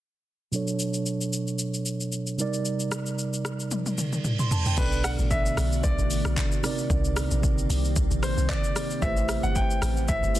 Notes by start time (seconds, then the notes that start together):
0.52 B2 F#3 D4 A4, shaker
0.56 C#5
0.68 shaker
0.79 shaker
0.94 shaker
1.06 shaker
1.21 shaker
1.33 shaker
1.47 shaker
1.59 shaker
1.74 shaker
1.86 shaker
2.00 shaker
2.12 shaker
2.27 shaker
2.37 C3 G3 D#4 A#4, shaker
2.41 D5
2.53 shaker
2.65 shaker
2.80 shaker
2.92 cross-stick, shaker
3.06 shaker
3.19 shaker
3.33 shaker
3.45 cross-stick, shaker
3.60 shaker
3.71 high tom, reverse cymbal, shaker
3.86 high tom, shaker
3.98 mid tom, shaker
4.13 mid tom, shaker
4.24 mid tom, shaker
4.39 C6, mid tom, shaker
4.51 A5, floor tom, shaker
4.66 G5, floor tom, shaker
4.77 B1 B2 D3 A3 B3 C#4 D4 F#4 A4 B4, kick, crash, shaker
4.81 D5
4.85 D4
4.92 shaker
5.04 F#5, cross-stick, open hi-hat, shaker
5.18 A1, shaker
5.31 E5, kick, shaker
5.46 shaker
5.57 B1, cross-stick, open hi-hat, shaker
5.72 shaker
5.84 B1 D5, kick, shaker
5.99 A1, shaker
6.11 open hi-hat, shaker
6.25 B1, cross-stick, shaker
6.37 kick, clap, shaker
6.52 shaker
6.62 C3 D#3 A#3 C4 D#4 G4 A#4 D5, cross-stick, open hi-hat, shaker
6.66 D5
6.78 shaker
6.90 C2, kick, shaker
7.04 shaker
7.17 cross-stick, open hi-hat, shaker
7.31 A#1, shaker
7.43 kick, shaker
7.58 shaker
7.70 C2, open hi-hat, shaker
7.85 shaker
7.96 C2, kick, shaker
8.11 A#1, shaker
8.23 C5, cross-stick, open hi-hat, shaker
8.37 C2, shaker
8.49 D5, kick, clap, shaker
8.64 shaker
8.76 cross-stick, open hi-hat, shaker
8.90 shaker
9.01 A1 C3 A3 C4 E4 G4 B4 E5, kick, shaker
9.05 C5
9.17 shaker
9.29 cross-stick, open hi-hat, shaker
9.43 G1 F#5, shaker
9.55 G5, kick, shaker
9.71 shaker
9.82 A1, cross-stick, open hi-hat, shaker
9.97 shaker
10.08 A1 E5, kick, shaker
10.23 G1, shaker
10.35 A3 E4 G4 B4, open hi-hat, shaker